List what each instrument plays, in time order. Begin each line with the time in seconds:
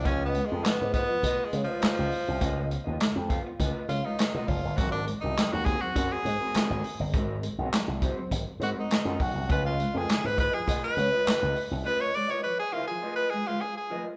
0.02 slap bass C#2, clean electric guitar F4 B4 D#5, kick, closed hi-hat
0.06 clean electric guitar F3, tenor saxophone C#4
0.25 tenor saxophone B3
0.32 clean electric guitar G#3, muted clean electric guitar stroke, closed hi-hat
0.46 tenor saxophone G#3, clean electric guitar F4 B4 D#5
0.50 slap bass F2, muted clean electric guitar stroke
0.63 clean electric guitar F3, tenor saxophone B3, muted clean electric guitar stroke, muted slap bass stroke, snare, clap, closed hi-hat
0.78 slap bass G#2, muted clean electric guitar stroke
0.92 tenor saxophone B3, clean electric guitar F4 B4 D#5, muted clean electric guitar stroke, kick, closed hi-hat
1.08 clean electric guitar F3, muted clean electric guitar stroke
1.22 slap bass B2, clean electric guitar F4 B4 D#5, kick, closed hi-hat
1.45 tenor saxophone G#3
1.51 slap bass C#3, clean electric guitar G#3, muted clean electric guitar stroke, closed hi-hat
1.63 tenor saxophone F3, clean electric guitar D#5
1.68 clean electric guitar F4 B4
1.81 clean electric guitar G#3 F4 B4 D#5, muted slap bass stroke, snare, clap, closed hi-hat
1.99 slap bass C#2
2.10 muted clean electric guitar stroke, open hi-hat
2.26 slap bass C2, clean electric guitar C#4, muted clean electric guitar stroke
2.40 slap bass C#2, clean electric guitar C#4 F4 B4 D#5, kick, closed hi-hat
2.59 muted clean electric guitar stroke
2.70 clean electric guitar B3, muted clean electric guitar stroke, closed hi-hat
2.84 slap bass D#2, clean electric guitar F4 B4 D#5
2.99 clean electric guitar G#3, muted clean electric guitar stroke, snare, clap, closed hi-hat
3.15 slap bass F2, muted clean electric guitar stroke
3.28 clean electric guitar F4 B4 F5, muted clean electric guitar stroke, kick, closed hi-hat
3.45 clean electric guitar B3, muted clean electric guitar stroke
3.59 slap bass C#2, clean electric guitar F4 B4 D#5, muted clean electric guitar stroke, kick, closed hi-hat
3.88 slap bass C#3, clean electric guitar G#3, tenor saxophone F4, muted clean electric guitar stroke, closed hi-hat
4.03 clean electric guitar G#3 F4 B4 F5, tenor saxophone D#4
4.18 muted clean electric guitar stroke, snare, clap, closed hi-hat
4.34 slap bass B2, clean electric guitar F4 B4 D#5
4.47 slap bass F#1, clean electric guitar F3, tenor saxophone F4, muted clean electric guitar stroke, kick, open hi-hat
4.63 slap bass G1, muted clean electric guitar stroke
4.76 slap bass G#1, clean electric guitar F#3 C4 F#4 A#4, tenor saxophone F#4, kick, closed hi-hat
4.92 tenor saxophone D4
5.07 clean electric guitar G#3, muted clean electric guitar stroke, closed hi-hat
5.21 slap bass C2, clean electric guitar C4 F#4 A#4, tenor saxophone D#4, muted clean electric guitar stroke
5.36 clean electric guitar F#3, muted clean electric guitar stroke, snare, clap, closed hi-hat
5.51 slap bass D#2, tenor saxophone F#4, muted clean electric guitar stroke
5.65 clean electric guitar C4 F#4 A#4, tenor saxophone G#4, kick, closed hi-hat
5.81 clean electric guitar F#3, tenor saxophone F#4, muted clean electric guitar stroke
5.95 slap bass F#2, clean electric guitar C4 F#4 A#4, kick, closed hi-hat
6.12 tenor saxophone G#4
6.24 slap bass G#2, clean electric guitar G#3, muted clean electric guitar stroke, closed hi-hat
6.40 clean electric guitar C4 F#4 A#4
6.53 clean electric guitar G#3 B3 F4 A4, muted slap bass stroke, snare, clap, closed hi-hat
6.65 clean electric guitar C4 F#4 A#4
6.70 slap bass G#1
6.84 muted clean electric guitar stroke, open hi-hat
7.00 slap bass G1, clean electric guitar C4, muted clean electric guitar stroke
7.13 slap bass G#1, clean electric guitar G#3 C4 F#4 A#4, kick, closed hi-hat
7.29 muted clean electric guitar stroke
7.43 clean electric guitar G#3, muted clean electric guitar stroke, closed hi-hat
7.58 slap bass B1, clean electric guitar C4 F#4 A#4
7.72 clean electric guitar F#3, muted clean electric guitar stroke, snare, clap, closed hi-hat
7.87 slap bass C2, muted clean electric guitar stroke
8.01 clean electric guitar C4 F#4 C5, muted clean electric guitar stroke, kick, closed hi-hat
8.18 clean electric guitar F#3, muted clean electric guitar stroke
8.31 slap bass G#1, muted clean electric guitar stroke, kick, closed hi-hat
8.47 muted clean electric guitar stroke
8.60 slap bass G#2, clean electric guitar G#3 C4 F#4 A#4, tenor saxophone F#4, closed hi-hat
8.76 clean electric guitar G#3, tenor saxophone D#4, muted clean electric guitar stroke
8.90 muted clean electric guitar stroke, snare, clap, closed hi-hat
9.05 slap bass F#2, clean electric guitar C4 F#4 A#4
9.20 slap bass B1, clean electric guitar F#3, tenor saxophone F#4, muted clean electric guitar stroke, kick, open hi-hat
9.35 slap bass C2, muted clean electric guitar stroke
9.49 slap bass C#2, clean electric guitar F3 F4 B4 D#5, tenor saxophone B4, kick, closed hi-hat
9.66 tenor saxophone F4
9.79 clean electric guitar G#3, muted clean electric guitar stroke, closed hi-hat
9.94 slap bass F2, clean electric guitar F4 B4 D#5, tenor saxophone G#4
10.08 clean electric guitar F3, muted clean electric guitar stroke, snare, clap, closed hi-hat
10.24 slap bass G#2, tenor saxophone B4, muted clean electric guitar stroke
10.36 clean electric guitar F4 B4 D#5, tenor saxophone B4, muted clean electric guitar stroke, kick, closed hi-hat
10.53 clean electric guitar F3, tenor saxophone G#4, muted clean electric guitar stroke
10.66 slap bass B2, clean electric guitar F4 B4 D#5, kick, closed hi-hat
10.84 tenor saxophone B4
10.96 slap bass C#3, clean electric guitar G#3, muted clean electric guitar stroke, closed hi-hat
11.12 clean electric guitar F4 B4 D#5
11.25 clean electric guitar G#3 F4 B4 D#5, muted slap bass stroke, snare, clap, closed hi-hat
11.43 slap bass C#2
11.55 muted clean electric guitar stroke, open hi-hat
11.70 slap bass C2, clean electric guitar C#4, muted clean electric guitar stroke
11.83 clean electric guitar C#4 F4 B4 D#5, tenor saxophone B4
12.01 tenor saxophone C#5, muted clean electric guitar stroke
12.13 clean electric guitar G#3, tenor saxophone D5, muted clean electric guitar stroke
12.28 clean electric guitar F4 B4 D#5, tenor saxophone C#5
12.42 clean electric guitar F3, tenor saxophone B4, muted clean electric guitar stroke
12.58 tenor saxophone G#4, muted clean electric guitar stroke
12.72 tenor saxophone F4, clean electric guitar F4 B4 F5, muted clean electric guitar stroke
12.87 tenor saxophone G#4, muted clean electric guitar stroke
12.91 clean electric guitar F3
13.02 clean electric guitar F4 B4 D#5, muted clean electric guitar stroke
13.16 tenor saxophone B4
13.30 clean electric guitar G#3, tenor saxophone G#4, muted clean electric guitar stroke
13.47 clean electric guitar G#3 F4 B4 F5, tenor saxophone F4
13.60 tenor saxophone G#4, muted clean electric guitar stroke
13.77 tenor saxophone G#4
13.90 clean electric guitar F3 F4 B4 D#5
14.06 muted clean electric guitar stroke